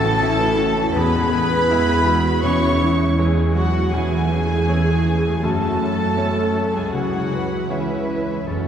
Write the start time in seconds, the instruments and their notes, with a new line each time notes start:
Already playing: grand piano A1 A2, double bass section A1, harp A2 C#4 E4, french horn section A3, cello section F#4, clarinet A4, violin section A4 A5
0.04 viola section E3 E4
0.21 viola section A3 C#4, grand piano C#4 E4 E5, cello section E4, harp E4
0.40 viola section E3 E4
0.57 viola section A3 C#4, harp C#4, cello section F#4
0.76 viola section E3 E4
0.94 grand piano E1 E2, harp E2, double bass section E2, viola section B3 E4, french horn section B3, cello section G#4, violin section B4 B5, clarinet B4
1.12 viola section G#3 G#4
1.31 harp G#3, viola section B3 E4
1.50 viola section G#3 G#4
1.68 grand piano G#3 E4 E5, viola section B3 E4, harp E4, cello section G#4
1.87 viola section G#3 G#4
2.06 harp G#3, viola section B3 E4, cello section F#4
2.25 viola section G#3 G#4
2.43 grand piano E1 E2, harp E2, viola section E3 C#4, french horn section C#4, cello section E4, clarinet C#5, violin section C#5 C#6
2.62 viola section G#3 E4
2.81 viola section E3 C#4, harp G#3
3.00 viola section G#3 E4
3.18 viola section E3 C#4, grand piano G#3 E4 C#5, harp E4, cello section G#4
3.37 viola section G#3 E4
3.54 viola section E3 C#4, french horn section F#3, harp G#3, violin section F#4 F#5, clarinet F#4, cello section F#4
3.74 viola section G#3 E4
3.91 grand piano E1 E2, harp E2, viola section E3 C#4, cello section E4, violin section G#4 G#5, clarinet G#4, french horn section G#4
4.13 viola section A3 E4
4.30 viola section E3 C#4, harp A3, cello section G#4
4.50 viola section A3 E4
4.69 viola section E3 C#4, grand piano A3 E4 C#5, harp E4
4.88 viola section A3 E4
5.06 viola section E3 C#4, harp A3
5.25 viola section A3 E4
5.42 grand piano F#1 F#2, double bass section F#2, harp F#2, viola section F#3 C#4, french horn section A3, cello section F#4, violin section A4 A5, clarinet A4
5.63 viola section A3 F#4
5.80 viola section F#3 C#4, harp A3, cello section A4
6.01 viola section A3 F#4
6.17 viola section F#3 C#4, grand piano A3 C#4 C#5, harp C#4
6.38 viola section A3 F#4
6.55 viola section F#3 C#4, harp A3
6.73 french horn section G#3, viola section A3 F#4, violin section G#4 G#5, clarinet G#4
6.91 double bass section C#2, grand piano C#2 C#3, harp C#3, viola section E3 C#4, french horn section F#3, violin section F#4 F#5, clarinet F#4, cello section G#4
7.14 viola section G#3 E4
7.31 viola section E3 C#4, harp C#4, cello section B4
7.52 viola section G#3 E4
7.69 french horn section E3, viola section E3 C#4, grand piano G#3 C#4 C#5, clarinet E4, violin section E4 E5, harp C#5
7.91 viola section G#3 E4
8.09 viola section E3 C#4, harp C#4
8.29 viola section G#3 E4
8.47 grand piano F#1 F#2, harp F#2, double bass section F#2, french horn section C#3, viola section F#3 C#4, violin section C#4 C#5, clarinet C#4, cello section A4